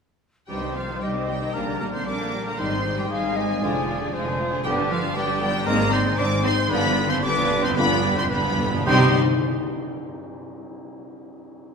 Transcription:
0.48 C2 G2 C3 G3 C4 D#4 G4 C5 G5
0.62 D#3 C4 D#4 C5
0.75 F3 G3 C4 F4 G4 F5
0.88 D#3 C4 D#4 C5
1.01 C2 G3 C4 G4 D#5 G5
1.15 D#3 C4 D#4 C5
1.27 G3 C4 G4 D#5 G5
1.41 D#3 C4 D#4 C5 G5
1.53 A#1 A#2 G3 A#3 D4 G4 A#4 D5 A#5
1.67 D3 A#3 A#4
1.80 G3 A#3 D4 G4 A#4 A#5
1.93 D3 A#3 C4 D4 A#4 C5 C6
2.06 A#1 G3 D4 G4 A#4 D5 D6
2.20 D3 A#3 D4 A#4
2.33 G3 D4 G4 D5
2.45 D3 A#3 A#4 G5 A#5
2.58 G#1 G#2 D#3 G3 G#3 C4 D#4 G4 C5 C6
2.72 D#3 G3 C4 G#4
2.85 G3 G#3 C4 D#4 G4
2.97 D#3 G3 C4 D#4 G4 G#4 G5
3.10 G#1 G3 G#3 D#4 G4 G#4 F5 G#5
3.23 D#3 G3 C4 G#4 C5
3.36 G3 G#3 D#4 G4 D#5
3.48 D#3 G3 C4 G#4 G#5
3.61 F1 F2 D3 F3 G#3 D4 F4 D5
3.74 D3 F3 D4 G#4
3.87 F3 G#3 D4 F4
4.00 D3 F3 D4 G#4
4.12 F1 F3 G#3 F4 G#4 C5
4.25 D3 F3 D4 G#4 D5
4.38 F3 G#3 F4 G#4
4.51 D3 F3 D4 G#4 G#5
4.64 G1 G2 D3 G3 B3 D4 G4 B4 G5
4.77 D3 G3 D4 G4
4.90 D3 F3 B3 D4 F4 G4 F5
5.02 G3 D4 G4
5.15 G1 D3 G3 B3 D4 G4 B4 D5 G5
5.28 G3 D4 G4 D5
5.41 D3 G3 B3 D4 G4 G5
5.54 G3 D4 G4 B5
5.66 G#1 G#2 D#3 G#3 A#3 C4 D#4 A#4 D5 A#5
5.80 D#3 G#3 C4 G#4
5.92 G#3 C4 D#4 C5 C6
6.06 D#3 G#3 C4 D#4 G#4
6.18 G#1 G#3 C4 D4 D#4 C5 D5 D6
6.31 D#3 G#3 C4 D#4 G#4
6.44 G#3 C4 D#4 C5 C6
6.57 D#3 G#3 C4 G#4 C6
6.70 G1 G2 D3 G3 B3 D4 F4 G4 B4 D5 B5
6.78 G2
6.84 D3 F3 B3 D4 F4
6.93 G2 D4
6.97 G2 D3 G3 B3 G4
7.09 F3 B3 C4 D4 F4 C5 C6
7.16 G2
7.22 G1 D3 G3 B3 D4 G4 B4 D5 D6
7.31 G2
7.36 G2 F3 B3 D4 F4
7.47 G2 D3 G3 B3 G4
7.55 G2
7.62 G2 F3 B3 C4 D4 F4 C5 G5 C6
7.70 G2
7.76 G1 G2 D3 G3 B3 D4 F4 G4 B4 D5 F5 B5
7.86 G2 B3 F4 G5
7.90 G2 F3 D4
7.99 G2 D3 G3 B3 G4 F5
8.08 G2
8.15 G2 F3 B3 C4 D4 F4 C5 G5 C6
8.23 G2
8.29 G1 G2 D3 G3 B3 G4 B4 F5 B5
8.39 G2
8.43 G2 F3 B3 D4 F4 D5
8.55 G2 D3 G3 B3 G4
8.64 G2
8.72 G2 F3 B3 D4 F4
8.81 C3 C4
8.86 C2 C3 D#3 G3 C4 D#4 G4 C5 G5 C6, tam-tam
8.92 D#5

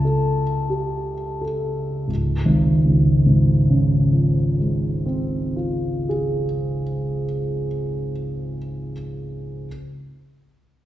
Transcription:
Already playing: C#2 A5
0.05 A4
0.70 G4
1.41 A4
2.08 C#1
2.45 G#1
2.85 C#2
3.26 G#2
3.70 C#3
4.13 F3
4.59 G#3
5.06 C4
5.56 F4
6.09 G#4

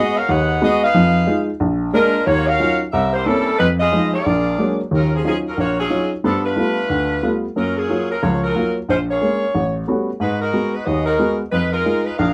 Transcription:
Already playing: G#3 B3 F#4 G#4 D#5
0.17 C#4 F#4 A#4 F5
0.29 D#2 D#4 G#4 B4 F#5
0.61 G#3 B3 F#4 G#4 D#5
0.84 D#4 G#4 B4 F5
0.94 F2 F3
1.27 G#3 D#4 F4
1.60 A#1
1.93 G#3 A#3 D4 F4 A#4
2.26 D#2 A#3 F4 F#4 C#5
2.47 C#4 F#4 A#4 F5
2.60 F#3 C#4 D#4 F4
2.92 C2 C#4 G4 A#4 E5
3.13 A#3 E4 G4 C5
3.25 G3 A#3 C4 C#4 E4 A4
3.59 F2 G#3 D#4 F4 B4
3.80 B3 F4 G#4 D#5
3.92 F3 G#3 D#4
4.13 A#3 F4 G#4 D5
4.26 A#1
4.58 F#3 G#3 A#3 D4
4.91 D#2 D#3 C#4
4.95 F#3 F4 A#4
5.15 F3 A#3 C#4 G#4
5.24 F3 F#3 A#3 C#4 D#4 F4 G#4
5.48 F#3 C#4 F4 A#4
5.57 A#1 A#3 F4 F#4 C#5
5.80 F#3 C#4 F4 G#4
5.90 F#3 C#4 D#4 F4
6.24 G2 F3 B3 D4 A4
6.45 A3 D4 F4 B4
6.56 G3 A3 B3 F4
6.90 D2
7.23 G3 A3 B3 F4
7.56 F#2 F#3 A#3 C#4 F4 A#4
7.78 F#3 C#4 F4 G#4
7.89 F#3 A#3 F4
8.11 F#3 C#4 F4 A#4
8.23 C#2 F3 A#3 F4 F#4 C#5
8.44 F#3 C#4 F4 A#4
8.55 F#3 A#3 F4
8.89 A#1 G#3 C#4 F4 C5
9.10 A#3 F4 G#4 C#5
9.21 G#3 A#3 C#4
9.55 A1
9.88 G3 A3 B3 C#4 F#4
10.20 G#2 G#3 D#4 F#4 B4
10.41 G#3 D#4 F#4 A#4
10.53 G#3 B3 F#4
10.74 G#3 D#4 F#4 B4
10.86 D#2 B3 F#4 G#4 D#5
11.06 G#3 D#4 F#4 A#4
11.19 G#3 B3 F#4
11.51 F2 G#3 D#4 F4 B4
11.72 G#3 D#4 F4 A#4
11.85 G#3 D#4 F4
12.05 G#3 D#4 F4 B4
12.18 A#1 D4 G#4 A#4 F5

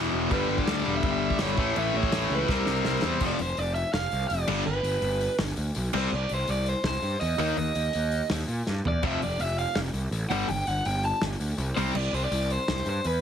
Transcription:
Already playing: E2 B2 E3
0.13 E1
0.30 G1 G2 D3 G3 B4, kick, crash
0.49 G1
0.58 D5, kick
0.67 D2, snare, crash
0.84 E1 G2 D3 G3
0.96 E5
1.03 G1 E5, kick, crash
1.30 kick
1.38 G1 G2 D3 G3 C#5, snare, crash
1.56 A1 A2 E3 A3, kick
1.76 A1 E5, crash
1.94 A1 C#5
2.03 kick
2.11 A1 A2 E3 A3, snare, crash
2.30 C#2
2.35 B4
2.48 C2 C3 G3 C4, kick, snare
2.52 A#4
2.66 C2, snare
2.85 C2, snare
3.02 E2 C3 G3 C4, snare
3.08 C5
3.20 F1 F2 C3 F3, kick, crash
3.25 D5
3.39 F1 C5, open hi-hat
3.57 F1 D5, open hi-hat
3.75 E5, open hi-hat
3.93 F1 F5, snare, open hi-hat
4.12 C2, open hi-hat
4.28 F1 D5, open hi-hat
4.48 G1 G2 D3 G3, crash
4.65 G1 B4
4.83 G1, open hi-hat
5.02 G1, open hi-hat
5.21 open hi-hat
5.39 G1, snare, open hi-hat
5.57 D2, open hi-hat
5.75 B1, open hi-hat
5.93 C2 C3 G3 C4, crash
5.98 C5
6.12 C2 D5
6.29 C2, open hi-hat
6.34 C5
6.48 C2 D5, open hi-hat
6.66 C5, open hi-hat
6.83 C2 C5, snare, open hi-hat
7.02 G2, open hi-hat
7.20 E2 D#5, open hi-hat
7.38 D#2 D#3 A#3 D#4, open hi-hat
7.57 D#2 D#5, open hi-hat
7.75 D#2, open hi-hat
7.93 D#2, open hi-hat
8.12 open hi-hat
8.30 D#2, snare, open hi-hat
8.48 A#2, open hi-hat
8.67 G2, snare
8.85 E2 D5, floor tom
9.03 F1 F2 C3 F3 E5, kick, crash
9.22 F1 D5, open hi-hat
9.39 F1 E5, open hi-hat
9.58 F5, open hi-hat
9.75 F1, snare, open hi-hat
9.93 C2, open hi-hat
10.11 A1, open hi-hat
10.30 G1 G2 D3 G3 F#5, open hi-hat
10.48 G1 G5, open hi-hat
10.67 G1 F#5, open hi-hat
10.85 G1 G5, open hi-hat
11.03 A5, open hi-hat
11.22 G1, snare, open hi-hat
11.40 D2, open hi-hat
11.58 C2, open hi-hat
11.76 C2 C3 G3 C4 C5, open hi-hat
11.95 C2 D5, crash
12.13 C2 C5, open hi-hat
12.25 D5
12.31 C2, open hi-hat
12.50 C5, open hi-hat
12.68 C2, snare, open hi-hat
12.86 G2 C5, open hi-hat
13.04 E2 B4, open hi-hat

